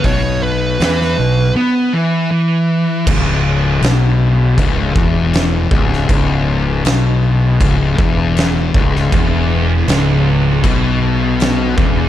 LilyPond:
<<
  \new Staff \with { instrumentName = "Lead electric guitar" } { \time 4/4 \key e \major \tempo 4 = 79 cis''8 b'4. r2 | r1 | r1 | r1 | }
  \new Staff \with { instrumentName = "Distorted electric guitar" } { \clef bass \time 4/4 \key e \major b,4 e8 b,8 b8 e8 e4 | r1 | r1 | e,4 cis,4 b,4. e,8 | }
  \new Staff \with { instrumentName = "Distorted electric guitar" } { \clef bass \time 4/4 \key e \major b,4 e8 b,8 b8 e8 e4 | cis,4 b,4 cis,8 e,4 cis,8 | cis,4 b,4 cis,8 e,4 cis,8 | e,4 cis,4 b,4. e,8 | }
  \new Staff \with { instrumentName = "Fingered electric bass" } { \clef bass \time 4/4 \key e \major b,,4 e,8 b,,8 r2 | cis,,4 b,,4 cis,,8 e,,4 cis,,8 | cis,,4 b,,4 cis,,8 e,,4 cis,,8 | e,,4 cis,,4 b,,4. e,,8 | }
  \new DrumStaff \with { instrumentName = "Drums" } \drummode { \time 4/4 <hho bd>4 <hho sn>16 sn8. r4 r4 | <cymc bd>4 <cymc sn>4 <cymc bd>8 bd8 <cymc sn>8 bd16 sn16 | <cymc bd>4 <cymc sn>4 <cymc bd>8 bd8 <cymc sn>8 bd16 sn16 | <cymc bd>4 <cymc sn>4 <cymc bd>4 <cymc sn>8 bd8 | }
>>